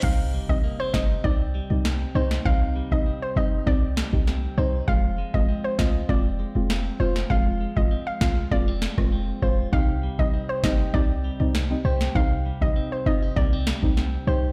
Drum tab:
CC |x---------------|----------------|----------------|----------------|
SD |------o-----o--o|----------o-o---|------o-----o--o|------o---or----|
BD |o--o--o-o-------|o--o----o--o----|o--o--o-o-------|o--o--o-o--o--o-|

CC |----------------|----------------|
SD |------o-----o--o|----------o-o---|
BD |o--o--o-o-------|o--o----o--o----|